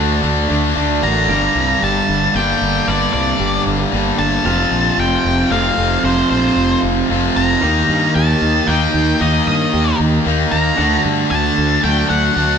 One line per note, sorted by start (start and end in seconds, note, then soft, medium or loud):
0.00 0.21 D2 medium
0.00 0.21 D3 medium
0.00 1.03 D3 medium
0.00 0.22 A3 medium
0.00 0.24 A3 medium
0.00 0.22 D4 medium
0.00 0.23 D4 medium
0.00 1.02 F#4 medium
0.00 1.26 F#4 medium
0.00 0.24 A4 loud
0.00 1.26 A4 medium
0.00 1.26 D5 medium
0.23 0.47 D2 medium
0.23 0.48 D3 loud
0.23 0.48 A3 loud
0.23 0.49 D4 loud
0.23 0.76 D4 medium
0.23 0.75 D5 medium
0.49 0.73 D2 medium
0.49 0.74 D3 medium
0.49 0.75 A3 loud
0.49 1.30 A3 medium
0.49 0.75 D4 loud
0.75 1.00 D2 medium
0.75 1.01 D3 medium
0.75 1.02 A3 loud
0.75 1.02 D4 loud
0.75 1.29 D4 medium
0.75 1.02 D5 medium
1.02 1.26 A1 medium
1.02 1.27 D3 medium
1.02 1.28 A3 loud
1.02 1.28 D4 loud
1.02 1.30 F#4 medium
1.02 1.29 A#4 medium
1.02 1.83 A#5 loud
1.28 1.47 G1 loud
1.28 2.32 G2 loud
1.28 2.61 G2 medium
1.28 2.33 D3 loud
1.28 2.34 G3 loud
1.28 4.42 D4 medium
1.28 4.42 G4 medium
1.28 4.42 A#4 medium
1.28 4.42 G5 medium
1.55 1.74 C2 medium
1.82 2.00 G1 medium
1.82 3.14 G4 medium
1.82 2.35 A5 loud
2.08 2.27 G1 medium
2.08 2.59 D4 medium
2.34 2.53 G1 loud
2.34 2.85 G2 medium
2.34 2.86 D3 medium
2.34 2.87 G3 medium
2.34 3.66 A#3 medium
2.34 2.90 G5 loud
2.61 2.80 G1 medium
2.61 3.65 D4 medium
2.86 3.06 G1 loud
2.86 3.91 G2 loud
2.86 4.19 G2 medium
2.86 3.91 D3 loud
2.86 3.92 G3 loud
2.86 3.12 D5 loud
3.13 3.32 C2 medium
3.13 3.62 D5 medium
3.39 3.58 G1 medium
3.39 4.45 G4 medium
3.66 3.85 G1 loud
3.66 4.18 D4 medium
3.92 4.11 G1 loud
3.92 4.43 G2 medium
3.92 4.44 D3 medium
3.92 4.45 G3 medium
3.92 4.46 A#3 medium
4.19 4.37 G1 loud
4.19 4.45 D4 medium
4.19 5.00 A5 loud
4.45 4.63 F1 loud
4.45 5.49 F2 medium
4.45 5.77 F2 medium
4.45 5.50 C3 loud
4.45 5.53 F3 loud
4.45 7.58 C4 medium
4.45 7.58 F4 medium
4.45 7.58 A4 medium
4.45 10.74 F5 medium
4.71 4.90 A#1 loud
4.98 5.16 F1 medium
4.98 6.57 F4 medium
4.98 5.51 G5 loud
5.25 5.43 F1 loud
5.25 5.77 C4 medium
5.50 5.69 F1 loud
5.50 6.02 F2 medium
5.50 6.03 C3 medium
5.50 6.06 F3 loud
5.50 6.83 A3 medium
5.50 6.00 F5 loud
5.78 5.96 F1 loud
5.78 6.82 C4 medium
6.04 6.22 F1 loud
6.04 7.08 F2 loud
6.04 7.36 F2 medium
6.04 7.08 C3 loud
6.04 7.12 F3 loud
6.04 6.29 C5 medium
6.31 6.49 A#1 medium
6.31 6.79 C5 medium
6.56 6.74 F1 medium
6.56 7.66 F4 medium
6.83 7.01 F1 loud
6.83 7.36 C4 medium
7.09 7.28 F1 medium
7.09 7.60 F2 medium
7.09 7.61 C3 medium
7.09 7.63 F3 medium
7.09 7.62 A3 medium
7.36 7.54 F1 loud
7.36 7.62 C4 medium
7.36 8.15 A#5 loud
7.61 7.81 D#2 medium
7.61 8.66 D#3 loud
7.61 8.94 D#3 medium
7.61 8.66 A#3 loud
7.61 10.75 D#4 medium
7.61 8.67 D#4 loud
7.61 10.75 G4 medium
7.61 10.75 A#4 medium
7.89 8.07 G2 medium
8.15 8.33 D#2 medium
8.15 9.47 G4 medium
8.15 8.69 A5 loud
8.42 8.60 D#2 medium
8.42 8.93 D#4 medium
8.67 8.86 D#2 loud
8.67 9.18 D#3 medium
8.67 10.00 A#3 medium
8.67 9.19 A#3 medium
8.67 9.20 D#4 loud
8.67 9.22 G5 medium
8.94 9.12 D#2 loud
8.94 9.99 D#4 medium
9.20 9.39 D#2 loud
9.20 10.24 D#3 medium
9.20 10.52 D#3 medium
9.20 10.25 A#3 loud
9.20 10.25 D#4 loud
9.20 9.46 D#5 medium
9.47 9.65 G2 medium
9.47 9.96 D#5 medium
9.73 9.92 D#2 loud
9.73 10.79 G4 medium
10.00 10.18 D#2 loud
10.00 10.51 D#4 medium
10.26 10.44 D#2 loud
10.26 10.77 D#3 medium
10.26 10.79 A#3 medium
10.26 10.77 A#3 medium
10.26 10.78 D#4 medium
10.52 10.70 D#2 medium
10.52 10.79 D#4 medium
10.52 11.01 A#5 loud
10.77 10.97 D2 loud
10.77 11.82 D3 loud
10.77 12.10 D3 medium
10.77 11.83 A3 loud
10.77 12.58 D4 medium
10.77 11.85 D4 loud
10.77 12.58 F#4 medium
10.77 12.58 A4 medium
10.77 12.58 F#5 medium
11.05 11.23 G2 loud
11.31 11.49 D2 medium
11.31 12.58 D4 medium
11.31 11.80 A5 loud
11.58 11.76 D2 loud
11.58 12.09 A3 medium
11.83 12.02 D2 loud
11.83 12.34 D3 medium
11.83 12.58 F#3 medium
11.83 12.35 A3 medium
11.83 12.38 D4 medium
11.83 12.09 G5 loud
12.09 12.29 D2 medium
12.09 12.58 A3 medium
12.09 12.58 F#5 loud
12.36 12.55 D2 loud
12.36 12.58 D3 loud
12.36 12.58 D3 medium
12.36 12.58 A3 loud
12.36 12.58 D4 loud